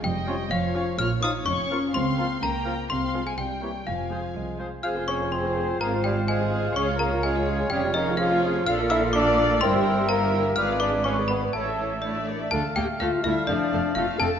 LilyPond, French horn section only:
\new Staff \with { instrumentName = "French horn section" } { \time 2/4 \key f \minor \tempo 4 = 125 << { g4 f4 | f'8 ees'8 des'4 | c'4 bes4 | c'8. aes16 g4 |
f4. r8 | aes'2 | c''2 | des''2~ |
des''2 | \key d \minor d''2 | e''2 | d''2 |
e''4 a'8 bes'8 | r2 | r2 | } \\ { r2 | r2 | r2 | r2 |
r2 | f'2~ | f'2 | f'2 |
aes'2 | a'2 | bes'2 | b'2 |
cis''4 d'4 | a'8 g'8 f'8 e'8 | d'4 f'8 a'8 | } >> }